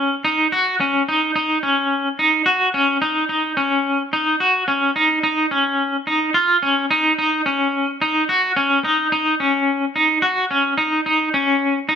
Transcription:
Already playing: C#4
0.25 D#4
0.52 F#4
0.80 C#4
1.08 D#4
1.36 D#4
1.63 C#4
2.19 D#4
2.46 F#4
2.74 C#4
3.02 D#4
3.29 D#4
3.57 C#4
4.13 D#4
4.40 F#4
4.68 C#4
4.96 D#4
5.23 D#4
5.51 C#4
6.07 D#4
6.34 F4
6.63 C#4
6.91 D#4
7.19 D#4
7.46 C#4
8.02 D#4
8.29 F#4
8.56 C#4
8.84 D#4
9.12 D#4
9.40 C#4
9.96 D#4
10.22 F#4
10.51 C#4
10.78 D#4
11.06 D#4
11.34 C#4
11.89 D#4

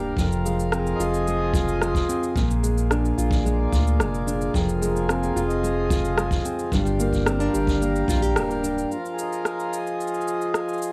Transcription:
Already playing: D1 G2 G3 A#3 D4 G4 A#4 F5
0.17 F1 F2 F3, kick, cabasa
0.32 cabasa
0.45 G#3 F4, cabasa
0.59 cabasa
0.72 C4, cross-stick, cabasa
0.76 G#4
0.86 cabasa
0.95 F1 D#5
1.00 F4, cabasa
1.14 cabasa
1.27 G#3, cabasa
1.54 F4, kick, cabasa
1.68 cabasa
1.81 G#3, cross-stick, cabasa
1.95 kick, cabasa
2.09 C4, cabasa
2.23 cabasa
2.35 A#1 A#2 A#3, kick, cabasa
2.51 cabasa
2.63 G#3, cabasa
2.78 cabasa
2.91 D4, cross-stick, cabasa
3.05 cabasa
3.18 A#1 F4, cabasa
3.31 D5, kick, cabasa
3.45 G#3, cabasa
3.72 D2 F4, kick, cabasa
3.87 cabasa
3.99 F1 G#3, cross-stick, cabasa
4.14 cabasa
4.27 D4, cabasa
4.41 cabasa
4.54 F1 F2 F3, kick, cabasa
4.69 cabasa
4.81 G#3, cabasa
4.96 cabasa
5.08 C4, cross-stick, cabasa
5.23 cabasa
5.36 F1 F4, cabasa
5.48 D#5, cabasa
5.63 G#3, cabasa
5.90 F4, kick, cabasa
6.05 cabasa
6.18 G#3, cross-stick, cabasa
6.31 kick, cabasa
6.45 C4, cabasa
6.59 cabasa
6.72 G1 G2 G3, kick, cabasa
6.84 G4 F5, cabasa
6.99 A#3, cabasa
7.13 kick, cabasa
7.26 C4, cross-stick, cabasa
7.38 D4 A#4, cabasa
7.54 G1 G4, cabasa
7.67 kick, cabasa
7.81 A#3, cabasa
7.96 cabasa
8.08 A#1 F4, kick, cabasa
8.22 G4, cabasa
8.36 D1 A#3, cross-stick, cabasa
8.51 cabasa
8.63 D4, cabasa
8.78 cabasa
8.90 F3, cabasa
8.99 F4
9.05 cabasa
9.13 G#4
9.19 D#5, cabasa
9.32 cabasa
9.45 cross-stick, cabasa
9.60 cabasa
9.73 cabasa
9.87 cabasa
10.00 cabasa
10.07 cabasa
10.14 cabasa
10.21 cabasa
10.28 cabasa
10.41 cabasa
10.54 cross-stick, cabasa
10.69 cabasa
10.73 cabasa
10.78 cabasa
10.82 cabasa
10.87 cabasa

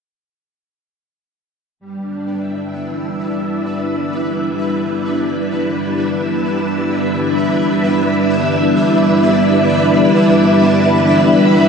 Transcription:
1.80 G3 B3 B4
2.01 D4
2.35 E5
2.80 E4
3.59 B4
6.75 E5

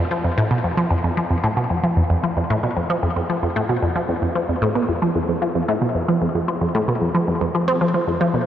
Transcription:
0.11 F3
0.24 F2
0.38 A2
0.51 B2
0.64 F2
0.77 F3
0.91 F2
1.04 F2
1.17 F3
1.30 F2
1.44 A2
1.57 B2
1.70 F2
1.84 F3
1.97 F2
2.10 F2
2.23 F3
2.37 F2
2.50 A2
2.63 B2
2.77 F2
2.90 F3
3.03 F2
3.16 F2
3.30 F3
3.43 F2
3.56 A2
3.69 B2
3.83 F2
3.96 F3
4.09 F2
4.22 F2
4.36 F3
4.49 F2
4.62 A2
4.76 B2
4.89 F2
5.02 F3
5.16 F2
5.29 F2
5.42 F3
5.55 F2
5.68 A2
5.82 B2
5.95 F2
6.08 F3
6.22 F2
6.35 F2
6.48 F3
6.61 F2
6.75 A2
6.88 B2
7.01 F2
7.14 F3
7.28 F2
7.41 F2
7.54 F3
7.68 C4
7.81 F3
7.94 F3
8.07 F2
8.21 F3
8.34 B2

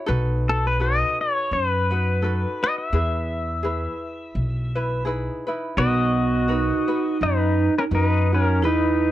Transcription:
0.06 B1 D#4 F#4 A4 B4
0.49 A4
0.67 B4
0.79 D#4 F#4 A4 B4 D#5
1.21 C#5
1.51 F#2 C5
1.70 B4
1.91 D#4 F#4 B4
2.22 D#4 F#4 A4 B4
2.63 D#4 F#4 B4 D#5
2.78 E5
2.93 E2 E4 G#4 B4
3.63 E4 G#4 B4
4.35 B1
4.75 E4 B4
5.05 D#4 E4 G#4 B4
5.47 D#4 E4 B4
5.77 B1 B3 D#4 F#4 A#4 B4 D#5
6.48 D#4 F#4 A#4 B4
6.88 D#4 F#4 B4
7.21 F#2 D#4 B4
7.78 C#4 A#4
7.91 F#2 D#4 F#4 B4
8.32 C#4 D#4 F#4 A#4
8.62 E2 E4 G#4 B4
8.67 D#4

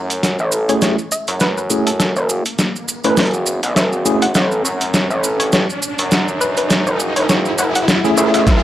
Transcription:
Already playing: F#2, riser
0.10 closed hi-hat, maracas
0.23 snare, closed hi-hat, maracas
0.39 A1, maracas
0.52 maracas
0.69 A3 C#4 E4 G#4 C#5, closed hi-hat, maracas
0.81 C#5, snare, closed hi-hat, maracas
0.98 maracas
1.12 E5, maracas
1.27 F#2, closed hi-hat, maracas
1.40 B4, snare, closed hi-hat, maracas
1.58 B4, maracas
1.70 A3 C#4 E4 G#4, maracas
1.87 A4, closed hi-hat, maracas
2.00 A4, snare, closed hi-hat, maracas
2.16 F#1, maracas
2.29 maracas
2.46 closed hi-hat, maracas
2.59 snare, closed hi-hat, maracas
2.76 maracas
2.88 maracas
3.04 F#1 A3 C#4 E4 B4, closed hi-hat, maracas
3.17 F#1, snare, closed hi-hat, maracas
3.20 closed hi-hat
3.23 closed hi-hat
3.26 closed hi-hat
3.31 closed hi-hat, maracas
3.46 maracas
3.63 B1, closed hi-hat, maracas
3.76 F#1 E5, snare, closed hi-hat, maracas
3.93 maracas
4.05 A3 C#4 E4 G#4, maracas
4.22 F#5, closed hi-hat, maracas
4.35 F#5, snare, closed hi-hat, maracas
4.51 maracas
4.64 F#2, maracas
4.81 closed hi-hat, maracas
4.94 snare, closed hi-hat, maracas
5.10 A1, maracas
5.24 maracas
5.40 C#5, closed hi-hat, maracas
5.52 C#5, snare, closed hi-hat, maracas
5.70 maracas
5.82 maracas
5.98 F#2, closed hi-hat, maracas
6.11 snare, closed hi-hat, maracas
6.28 maracas
6.41 B4, maracas
6.57 B4, closed hi-hat, maracas
6.70 snare, closed hi-hat, maracas
6.87 F#1, maracas
7.00 maracas
7.16 F#1 C#5, closed hi-hat, maracas
7.29 C#5, snare, closed hi-hat, maracas
7.45 maracas
7.58 F#1 F#5, maracas
7.75 F#5, closed hi-hat, maracas
7.88 snare, closed hi-hat, maracas
8.04 A3 C#4 E4 G#4, maracas
8.17 F#1 A3 C#4 E4 G#4 E5, maracas
8.34 B1 E5, closed hi-hat, maracas
8.47 E5, kick, snare, closed hi-hat, maracas

